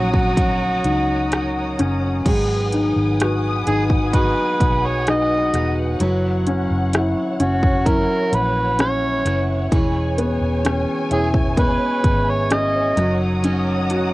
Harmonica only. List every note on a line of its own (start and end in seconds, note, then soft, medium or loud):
0.00 0.12 F#4 medium
0.12 1.74 F#4 medium
3.67 3.83 G#4 medium
4.15 4.87 B4 medium
4.86 5.08 C#5 medium
5.10 5.74 D#5 medium
7.42 7.89 F#4 medium
7.88 8.36 A#4 medium
8.35 8.80 B4 medium
8.81 9.46 C#5 medium
11.13 11.29 G#4 medium
11.59 12.31 B4 medium
12.30 12.51 C#5 medium
12.52 13.17 D#5 medium